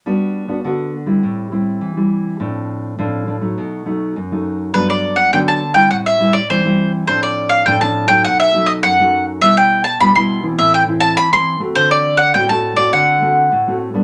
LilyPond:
<<
  \new Staff \with { instrumentName = "Mandolin" } { \time 4/4 \key g \major \tempo 4 = 102 r1 | r1 | b'16 d''8 fis''16 g''16 a''8 g''16 fis''16 e''8 d''16 c''8. r16 | c''16 d''8 f''16 g''16 a''8 g''16 fis''16 e''8 dis''16 fis''8. r16 |
e''16 g''8 a''16 b''16 c'''8 r16 e''16 g''8 a''16 b''16 c'''8 r16 | c''16 d''8 fis''16 g''16 a''8 d''16 fis''4. r8 | }
  \new Staff \with { instrumentName = "Nylon-string guitar" } { \time 4/4 \key g \major << { <b d' fis'>8. <b d' fis'>16 <b d' fis'>8 r16 <g c' e'>8. <g c' e'>8. <g c' e'>8. | <f c' d'>4 <f c' d'>8 <f c' d'>16 <fis a ees'>8. <fis a dis'>8 r16 <fis a dis'>8. | <fis b d'>4 <fis b d'>8 r16 <g c' e'>8. <g c' e'>16 r16 <g c' e'>16 <g c' e'>8. | <f c' d'>4 <f c' d'>16 <f c' d'>8 <fis a ees'>8. <fis a dis'>8. <fis a dis'>8. |
<g b e'>8. r16 <g b e'>16 <g b e'>8 <e c' e'>8. <e c' e'>8. <e c' e'>8 <a c' fis'>16~ | <a c' fis'>8. r16 <a c' fis'>16 <a c' fis'>8 <a c' fis'>8. <a c' fis'>8 r16 <a c' fis'>8 <g b d'>16 | } \\ { g4 d4 a,4 e4 | a,4 a,4 b,4 fis,4 | g,4 d4 a,4 e4 | a,4 a,4 b,4 fis,4 |
b,4 b,4 a,4 e4 | d4 a,4 d4 a,4 | } >> }
>>